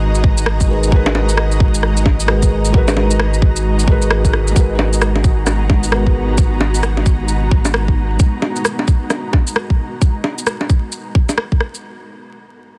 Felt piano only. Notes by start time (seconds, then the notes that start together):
Already playing: G#3 F#4 A#4 B4
0.67 G#3 F#4 A#4
0.71 B4
0.88 G#3 F#4
0.93 A#4 B4
2.26 G#3 F#4 A#4 B4
2.69 G#3 F#4
2.75 A#4 B4
3.83 G#3 F#4
3.89 A#4 B4
4.52 G#3 F#4
4.57 A#4 B4
5.90 G#3 F#4 A#4 B4